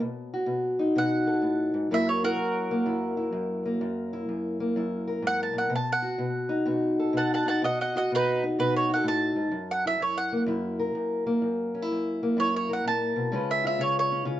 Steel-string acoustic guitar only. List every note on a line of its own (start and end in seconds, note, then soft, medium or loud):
0.00 0.45 B2 medium
0.00 1.91 F#3 medium
0.34 0.96 F#4 medium
0.46 0.94 B2 medium
0.79 1.89 D#4 medium
0.95 1.41 B2 medium
0.95 1.92 F#4 medium
1.27 1.89 A4 medium
1.42 1.73 A2 medium
1.74 1.90 G#2 medium
1.91 2.36 F#2 medium
1.91 5.72 F#3 medium
1.91 2.71 A#3 medium
1.91 2.23 E4 medium
1.91 3.81 A#4 medium
2.23 2.86 E4 medium
2.37 2.85 F#2 medium
2.71 3.64 A#3 medium
2.86 3.31 F#2 medium
2.86 3.16 E4 medium
3.17 3.79 E4 medium
3.32 3.80 F#2 medium
3.66 4.59 A#3 medium
3.81 4.28 F#2 medium
4.13 4.76 E4 medium
4.29 4.75 F#2 medium
4.60 5.72 A#3 medium
4.76 5.22 F#2 medium
4.76 5.70 E4 medium
5.07 5.70 A#4 medium
5.22 5.53 G#2 medium
5.53 5.69 A#2 medium
5.70 6.18 B2 medium
6.02 6.66 F#4 medium
6.18 6.65 B2 medium
6.49 7.45 D#4 medium
6.66 7.12 B2 medium
6.66 7.95 F#4 medium
7.00 7.61 A4 medium
7.13 7.60 B2 medium
7.46 7.60 D#4 medium
7.62 8.10 B2 medium
7.96 8.59 F#4 medium
8.12 8.58 B2 medium
8.44 9.52 D#4 medium
8.59 9.03 B2 medium
8.59 8.89 F#4 medium
8.89 8.95 F#4 medium
8.95 9.52 A4 medium
9.03 9.35 A2 medium
9.36 9.51 G#2 medium
9.51 10.00 F#2 medium
9.85 10.47 E4 medium
10.00 10.46 F#2 medium
10.32 11.25 A#3 medium
10.46 10.94 F#2 medium
10.46 11.41 E4 medium
10.79 11.41 A#4 medium
10.95 11.41 F#2 medium
11.27 12.22 A#3 medium
11.42 11.90 F#2 medium
11.75 11.82 C#4 medium
11.82 12.37 E4 soft
11.92 12.35 F#2 medium
12.23 13.32 A#3 medium
12.37 12.84 F#2 medium
12.37 13.31 E4 medium
12.69 13.31 A#4 medium
12.84 13.15 A#2 medium
13.16 13.32 B2 medium
13.32 13.78 C#3 medium
13.32 14.40 G#3 medium
13.32 14.10 C#4 medium
13.32 13.63 F4 medium
13.32 14.40 B4 medium
13.64 14.24 F4 medium
13.79 14.24 C#3 medium
14.12 14.40 C#4 medium
14.25 14.40 C#3 medium
14.25 14.40 F4 medium